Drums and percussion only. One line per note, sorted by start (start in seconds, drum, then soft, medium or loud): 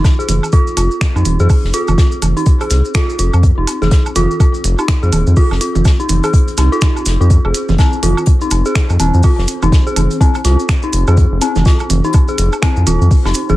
0.04 kick loud
0.04 snare loud
0.04 closed hi-hat medium
0.04 low woodblock soft
0.04 maracas medium
0.20 maracas soft
0.29 closed hi-hat medium
0.29 low conga medium
0.29 maracas medium
0.43 low woodblock soft
0.43 maracas soft
0.52 kick loud
0.52 closed hi-hat medium
0.52 maracas soft
0.67 maracas soft
0.77 closed hi-hat medium
0.77 low woodblock soft
0.77 maracas medium
0.91 maracas soft
1.01 finger snap loud
1.01 kick loud
1.01 snare loud
1.01 closed hi-hat medium
1.01 maracas soft
1.16 low woodblock soft
1.16 maracas soft
1.25 closed hi-hat medium
1.25 low conga medium
1.25 maracas medium
1.39 maracas soft
1.49 kick loud
1.49 open hi-hat medium
1.49 low woodblock soft
1.49 maracas medium
1.65 snare soft
1.74 closed hi-hat medium
1.74 maracas medium
1.88 low conga medium
1.88 low woodblock soft
1.88 maracas soft
1.98 kick loud
1.98 snare loud
1.98 closed hi-hat medium
1.98 maracas medium
2.12 maracas soft
2.22 closed hi-hat medium
2.22 low conga medium
2.22 low woodblock soft
2.22 maracas medium
2.37 closed hi-hat soft
2.37 maracas soft
2.46 kick loud
2.46 closed hi-hat medium
2.46 maracas medium
2.61 closed hi-hat soft
2.61 low woodblock soft
2.61 maracas soft
2.70 snare soft
2.70 closed hi-hat medium
2.70 maracas medium
2.85 maracas soft
2.94 finger snap loud
2.94 kick loud
2.94 snare loud
2.94 closed hi-hat medium
2.94 low woodblock soft
2.94 maracas soft
3.09 maracas soft
3.19 closed hi-hat medium
3.19 maracas medium
3.33 low woodblock soft
3.33 maracas soft
3.43 kick loud
3.43 closed hi-hat medium
3.43 maracas soft
3.67 closed hi-hat medium
3.67 low woodblock soft
3.67 maracas medium
3.82 snare soft
3.82 low conga medium
3.82 maracas soft
3.91 kick loud
3.91 snare loud
3.91 closed hi-hat medium
3.91 maracas soft
4.06 low woodblock soft
4.06 maracas soft
4.16 closed hi-hat loud
4.16 closed hi-hat medium
4.16 low conga medium
4.16 maracas medium
4.31 maracas soft
4.40 kick loud
4.40 closed hi-hat medium
4.40 low woodblock soft
4.40 maracas medium
4.54 maracas soft
4.64 closed hi-hat medium
4.64 maracas medium
4.78 low woodblock soft
4.78 maracas soft
4.88 finger snap loud
4.88 kick loud
4.88 snare loud
4.88 closed hi-hat medium
4.88 maracas medium
5.03 maracas soft
5.12 closed hi-hat medium
5.12 low conga medium
5.12 low woodblock soft
5.12 maracas loud
5.27 maracas soft
5.36 kick loud
5.36 open hi-hat medium
5.36 maracas soft
5.51 snare soft
5.51 low woodblock soft
5.61 closed hi-hat medium
5.61 closed hi-hat loud
5.61 maracas medium
5.75 low conga medium
5.75 maracas soft
5.85 kick loud
5.85 snare loud
5.85 closed hi-hat medium
5.85 low woodblock soft
5.85 maracas medium
6.00 maracas soft
6.09 closed hi-hat medium
6.09 low conga medium
6.09 maracas medium
6.23 closed hi-hat soft
6.23 low woodblock soft
6.23 maracas soft
6.33 kick loud
6.33 closed hi-hat medium
6.33 maracas medium
6.48 closed hi-hat soft
6.48 maracas soft
6.57 snare soft
6.57 closed hi-hat medium
6.57 low woodblock soft
6.57 maracas loud
6.72 maracas soft
6.81 finger snap loud
6.81 kick loud
6.81 snare loud
6.81 closed hi-hat medium
6.81 maracas medium
6.96 low woodblock soft
6.96 maracas soft
7.06 snare loud
7.06 closed hi-hat loud
7.06 closed hi-hat medium
7.06 maracas medium
7.21 maracas soft
7.30 kick loud
7.30 closed hi-hat medium
7.30 maracas medium
7.45 low woodblock soft
7.54 closed hi-hat medium
7.54 maracas medium
7.69 snare soft
7.69 low conga medium
7.69 maracas soft
7.78 kick loud
7.78 snare loud
7.78 closed hi-hat medium
7.78 low woodblock soft
7.78 maracas soft
7.93 maracas soft
8.03 closed hi-hat medium
8.03 low conga medium
8.03 maracas medium
8.17 low woodblock soft
8.17 maracas soft
8.26 kick loud
8.26 closed hi-hat medium
8.26 maracas soft
8.41 maracas soft
8.51 closed hi-hat medium
8.51 low woodblock soft
8.51 maracas medium
8.65 maracas soft
8.75 finger snap loud
8.75 kick loud
8.75 snare loud
8.75 closed hi-hat medium
8.75 maracas medium
8.90 low woodblock soft
8.90 maracas soft
8.99 closed hi-hat medium
8.99 low conga medium
8.99 maracas medium
9.14 maracas soft
9.23 kick loud
9.23 open hi-hat medium
9.23 low woodblock soft
9.23 maracas medium
9.38 snare medium
9.48 closed hi-hat medium
9.48 maracas medium
9.62 low conga medium
9.62 low woodblock soft
9.62 maracas soft
9.72 kick loud
9.72 snare loud
9.72 closed hi-hat medium
9.72 maracas soft
9.87 maracas soft
9.96 closed hi-hat medium
9.96 low conga medium
9.96 low woodblock soft
9.96 maracas medium
10.11 closed hi-hat soft
10.11 maracas soft
10.21 kick loud
10.21 closed hi-hat medium
10.21 maracas medium
10.35 closed hi-hat soft
10.35 low woodblock soft
10.35 maracas soft
10.44 snare soft
10.44 closed hi-hat medium
10.44 maracas medium
10.59 maracas soft
10.69 finger snap medium
10.69 kick loud
10.69 snare loud
10.69 closed hi-hat medium
10.69 low woodblock soft
10.69 maracas soft
10.83 maracas soft
10.93 closed hi-hat medium
10.93 maracas medium
11.07 low woodblock soft
11.07 maracas soft
11.17 kick loud
11.17 closed hi-hat medium
11.17 maracas soft
11.41 closed hi-hat medium
11.41 low woodblock soft
11.41 maracas medium
11.55 snare soft
11.55 low conga medium
11.55 maracas soft
11.65 kick loud
11.65 snare loud
11.65 closed hi-hat medium
11.65 maracas soft
11.80 low woodblock soft
11.80 maracas soft
11.90 closed hi-hat medium
11.90 low conga medium
11.90 maracas medium
12.04 maracas soft
12.13 kick loud
12.13 closed hi-hat medium
12.13 low woodblock soft
12.13 maracas medium
12.28 maracas soft
12.38 closed hi-hat medium
12.38 maracas medium
12.52 low woodblock soft
12.52 maracas soft
12.62 finger snap loud
12.62 kick loud
12.62 snare loud
12.62 closed hi-hat medium
12.62 maracas medium
12.77 maracas soft
12.87 closed hi-hat medium
12.87 low conga medium
12.87 low woodblock soft
12.87 maracas medium
13.02 maracas soft
13.11 kick loud
13.11 open hi-hat medium
13.11 maracas medium
13.25 snare medium
13.25 low woodblock soft
13.25 maracas soft
13.34 closed hi-hat medium
13.34 maracas medium
13.49 low conga medium
13.49 maracas soft